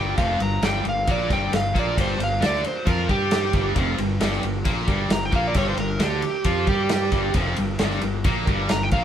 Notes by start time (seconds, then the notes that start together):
Already playing: G1 G2 G3 G4 G5
0.17 F1 F2 F3 A#3 D4 G4 A#4 F5, kick, ride
0.40 G1 G2 A#3 D4 G4 A#4 A#5, ride
0.62 G1 G2 G3 A#3 D4 G4 A#4 G5, snare, ride
0.85 G1 G2 A#3 D4 G4 A#4, ride
0.89 F5
1.07 A#1 A#2 A#3 D4 G4 A#4 D5, kick, ride
1.30 G1 G2 G3 A#3 D4 G4 C5 G5, kick, snare, ride
1.51 G1 G2 A#3 D4 G4 A#4, snare, ride
1.55 F5
1.74 A#1 A#2 A#3 D4 G4 A#4, kick, ride
1.79 D5
1.97 G1 G2 G3 A#3 D4 G4 A#4, kick, ride
2.01 C5
2.19 G1 G2 A#3 D4 G4 A#4, ride
2.24 F5
2.41 D2 D3 A#3 D4 G4 A#4, snare, ride
2.46 D5
2.54 snare
2.64 A#3 D4 G4 A#4, muted distorted electric guitar stroke, muted fingered electric bass stroke, ride
2.68 C5
2.86 F2 F3 A#3 D4 F4 G4 A#4, kick, ride
3.08 G2 G3 A#3 D4 G4 A#4, kick, ride
3.31 A#3 D4 G4 A#4, snare, ride
3.53 G1 G2 G3 A#3 D4 G4 A#4, kick, ride
3.75 F1 F2 F3 A#3 D4 G4 A#4, kick, ride
3.98 G1 G2 A#3 D4 G4 A#4, ride
4.20 G1 G2 G3 A#3 D4 G4 A#4, snare, ride
4.32 snare
4.43 G1 G2 A#3 D4 G4 A#4, ride
4.65 A#1 A#2 A#3 D4 G4 A4, kick, ride
4.87 G1 G2 G3 A#3 D4 G4 A#4, kick, ride
5.09 G1 G2 A#3 D4 G4 A#4 A#5, snare, ride
5.25 G5
5.32 A#1 A#2 A#3 D4 G4 A#4 F5, kick, ride
5.48 D5
5.54 G1 G2 G3 A#3 D4 G4 A#4 C#5, kick, ride
5.69 C5
5.77 G1 G2 A#3 D4 G4 A#4, ride
6.00 D2 D3 A#3 D4 G4 A#4, snare, ride
6.22 A#3 D4 G4 A#4, muted distorted electric guitar stroke, muted fingered electric bass stroke, ride
6.44 F2 F3 A#3 D4 F4 G4 A#4, kick, ride
6.67 G2 G3 A#3 D4 G4 A#4, kick, ride
6.89 A#3 D4 G4 A#4, snare, ride
7.12 G1 G2 G3 A#3 D4 G4 A#4, kick, ride
7.34 F1 F2 F3 A#3 D4 G4 A#4, kick, ride
7.56 G1 G2 A#3 D4 G4 A#4, ride
7.79 G1 G2 G3 A#3 D4 G4 A#4, snare, ride
7.91 snare
8.01 G1 G2 A#3 D4 G4 A#4, ride
8.24 A#1 A#2 A#3 D4 G4 A#4, kick, ride
8.45 G1 G2 G3 A#3 D4 G4 A#4, kick, ride
8.68 G1 G2 A#3 D4 G4 A#4 A#5, snare, ride
8.83 G5
8.91 A#1 A#2 A#3 D4 G4 A#4 F5, kick, ride